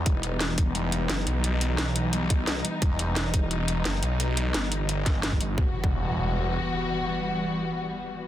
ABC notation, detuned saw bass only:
X:1
M:4/4
L:1/16
Q:1/4=174
K:Em
V:1 name="Detuned saw bass" clef=bass
E,,,2 E,,,8- E,,,2 F,,,2 B,,,2- | B,,,4 B,,,8- B,,,2 z2 | E,,,2 E,,,8- E,,,2 F,,,2 B,,,2- | B,,,4 G,,,8- G,,,2 G,,,2 |
E,,, z2 E,,,8- E,,, z4 | z16 |]